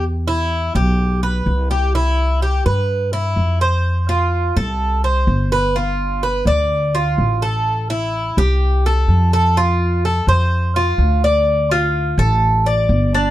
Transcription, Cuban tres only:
\new Staff \with { instrumentName = "Cuban tres" } { \time 4/4 \key e \phrygian \tempo 4 = 126 r8 e'4 g'4 b'4 g'8 | e'4 g'8 b'4 e'4 c''8~ | c''8 f'4 a'4 c''4 b'8 | f'4 b'8 d''4 f'4 a'8~ |
a'8 e'4 g'4 a'4 a'8 | f'4 a'8 c''4 f'4 d''8~ | d''8 f'4 a'4 d''4 d'8 | }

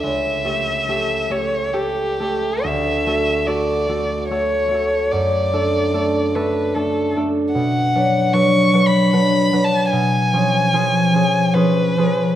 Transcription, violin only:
\new Staff \with { instrumentName = "Violin" } { \time 3/4 \key d \major \tempo 4 = 74 e''4. cis''8 g'4 | e''4 d''4 cis''4 | d''4. b'8 a'8 r8 | \key b \minor fis''4 \tuplet 3/2 { cis'''4 b''8~ b''4 a''8 } |
gis''2 b'4 | }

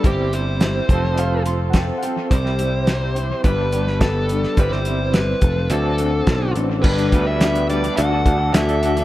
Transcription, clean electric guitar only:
\new Staff \with { instrumentName = "Clean electric guitar" } { \time 4/4 \key c \major \tempo 4 = 106 <g c' e' g'>4. <f c' f' a'>2~ <f c' f' a'>8 | <c g c' e' g'>2 <g, d g b d' g'>2 | <g c' e' g'>4. r8 <d c' fis' a'>2 | \key g \major <g b d' b'>8 <g b d' b'>16 <b d' b'>16 <g b d' b'>8 <g b d' b'>16 <b d' b'>16 <d d' fis' a'>16 <d' fis' a'>8 <d' fis' a'>16 <d d' fis' a'>16 <d' fis' a'>16 <d d' fis' a'>16 <d' fis' a'>16 | }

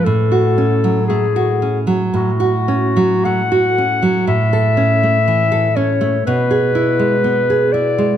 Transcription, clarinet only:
\new Staff \with { instrumentName = "Clarinet" } { \time 4/4 \key fis \minor \tempo 4 = 60 a'4 gis'8 r8 fis'4 fis''4 | e''4. cis''8 b'4. d''8 | }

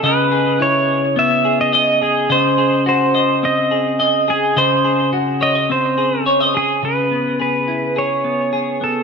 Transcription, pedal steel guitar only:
\new Staff \with { instrumentName = "Pedal steel guitar" } { \time 4/4 \key cis \minor \tempo 4 = 106 b'4 cis''4 e''8. dis''16 dis''8 gis'8 | bis'4 bis'4 dis''4. gis'8 | bis'4 r8 dis''8 bis'4 r8 gis'8 | b'4 b'4 cis''4. a'8 | }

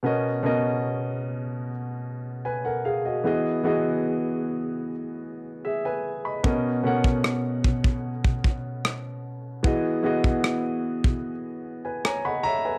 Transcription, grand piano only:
\new Staff \with { instrumentName = "Grand piano" } { \time 4/4 \key b \lydian \tempo 4 = 75 << { <b, b cis' ais' dis''>8 <b, b cis' ais' dis''>4. r2 | <e b fis' gis' dis''>8 <e b fis' gis' dis''>4. r2 | <b, b cis' ais' dis''>8 <b, b cis' ais' fis''>4. r2 | <e b fis' gis' dis''>8 <e b fis' gis' dis''>4. r4. ais''8 | } \\ { r2. <b' gis''>16 <ais' fis''>16 <gis' eis''>16 <fis' dis''>16~ | <fis' dis''>16 r2 r8. <gis' e''>16 <b' gis''>8 <dis'' b''>16~ | <dis'' b''>16 r2. r8. | r2 r8. <b' gis''>16 <cis'' gis'' ais''>16 <dis'' fis'' b''>16 <cis'' e''>16 <b' gis''>16 | } >> }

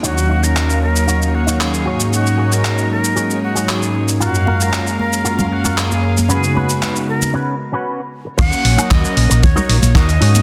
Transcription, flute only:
\new Staff \with { instrumentName = "Flute" } { \time 4/4 \key ees \minor \tempo 4 = 115 ges'8. bes'8. bes'4 ges'8 aes'8. r16 | ges'8. bes'8. bes'4 ges'8 aes'8. r16 | ges'8. bes'8. bes'4 ges'8 aes'8. r16 | aes'8. r8. bes'8 r2 |
ges''4 ees''4 des''4 ees''4 | }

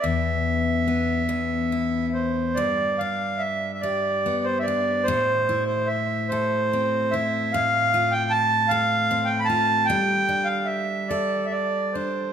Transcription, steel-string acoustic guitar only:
\new Staff \with { instrumentName = "Steel-string acoustic guitar" } { \time 6/8 \key g \mixolydian \tempo 4. = 48 e,4 b8 e,8 e'4 | g,8 d'4 g'8 b8 d'8 | a,8 e'4 a'8 c'8 e'8 | a,8 f'4 a'8 c'8 f'8 |
g8 d'4 a'4 d'8 | }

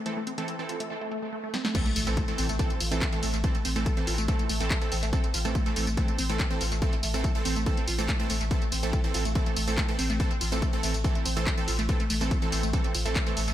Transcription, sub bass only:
\new Staff \with { instrumentName = "Sub bass" } { \clef bass \time 4/4 \key a \minor \tempo 4 = 142 r1 | r8 a,,16 a,,16 r8 a,,16 a,,16 r8 a,,16 a,,16 r8 a,,16 a,,16 | r8 a,,16 a,,16 r8 a,,16 a,,16 r8 a,,16 a,,16 r8 a,,16 a,,16 | r8 a,,16 a,,16 r8 a,,16 a,,16 r8 a,,16 a,,16 r8 a,,16 a,,16 |
r8 a,,16 a,,16 r8 a,,16 a,,16 r8 a,,16 a,,16 r8 a,,16 a,,16 | r8 a,,16 a,,16 r8 a,,16 a,,16 r8 a,,16 a,,16 r8 a,,16 a,,16 | r8 a,,16 a,,16 r8 a,,16 a,,16 r8 a,,16 a,,16 r8 a,,16 a,,16 | r8 a,,16 a,,16 r8 a,,16 a,,16 r8 a,,16 a,,16 r8 a,,16 a,,16 | }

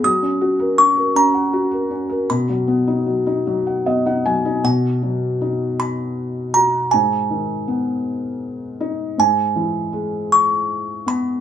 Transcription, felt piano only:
\new Staff \with { instrumentName = "Felt piano" } { \time 6/8 \key b \major \tempo 4. = 53 << { r2. | r2 dis''16 fis''16 gis''8 | r2. | r2. |
r2. | } \\ { fis16 cis'16 fis'16 ais'16 cis'16 ais'16 cis'16 fis''16 fis'16 ais'16 cis'16 ais'16 | b,16 fis16 b16 dis'16 fis16 dis'16 fis16 fis''16 b16 dis'16 fis16 dis'16 | b,8 fis8 dis'4. fis'8 | gis,8 dis8 b4. dis'8 |
gis,8 e8 gis4. b8 | } >> }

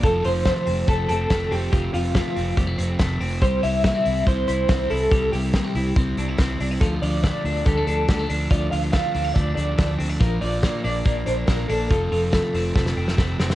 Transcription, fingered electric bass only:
\new Staff \with { instrumentName = "Fingered electric bass" } { \clef bass \time 4/4 \key f \major \tempo 4 = 141 f,,8 f,,8. r16 f,,8 f,,8 f,,8 f,,8 f,,8 | f,,8 f,,8. r16 f,,8 f,,8 f,,8 f,,8 f,,8 | c,8 c,8. r16 c,8 c,8 c,8 c,8 c,8 | c,8 c,8. r16 c,8 c,8 c,8 c,8 c,8 |
d,8 d,8. r16 d,8 d,8 d,8 d,8 d,8 | d,8 d,8. r16 d,8 d,8 d,8 d,8 d,8 | bes,,8 bes,,8. r16 bes,,8 bes,,8 bes,,8 bes,,8 bes,,8 | f,,8 f,,8. r16 f,,8 f,,8 f,,8 f,,8 f,,8 | }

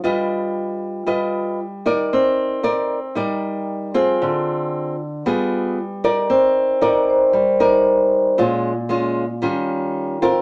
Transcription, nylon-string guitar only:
\new Staff \with { instrumentName = "Nylon-string guitar" } { \time 4/4 \key c \minor \tempo 4 = 115 << { <f' b' dis''>2 <f' b' dis''>4 r8 <dis' ais' d''>8~ | <dis' ais' d''>4 <ees' bes' d''>8 r8 <ees' bes' d''>4. <c' f' aes'>8~ | <c' f' aes'>4. r8 <b f' aes'>4 r8 <ees' bes' d''>8~ | <ees' bes' d''>4 <ees' bes' d''>4 r8 <ees' bes' d''>4. |
<aes des' f'>8 r8 <aes des' f'>8 r8 <g des' f'>4. <c' f' bes'>8 | } \\ { g2 g2 | c'2 g2 | d2 g2 | c'2 g2 |
bes,2 ees2 | } >> }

